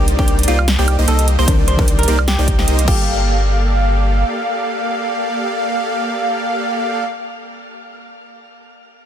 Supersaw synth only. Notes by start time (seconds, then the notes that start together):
Already playing: A#3 D#4 G4 C5 D5
0.19 A#3 D#4 G4 C5 D5
0.48 A#3 D#4 G4 C5 D5
0.79 A#3 D#4 G4 C5 D5
0.99 A#3 D#4 G4 C5 D#5
1.08 A#3 D#4 G4 C5 D#5
1.39 A#3 D#4 G4 C5 D#5
1.48 A#3 D#4 G4 C5 D5
1.79 A#3 D#4 G4 C5 D5
2.08 A#3 D#4 G4 C5 D5
2.39 A#3 D#4 G4 C5 D5
2.59 A#3 D#4 G4 C5 D#5
2.68 A#3 D#4 G4 C5 D#5
2.88 A#3 G4 A4 D5 F5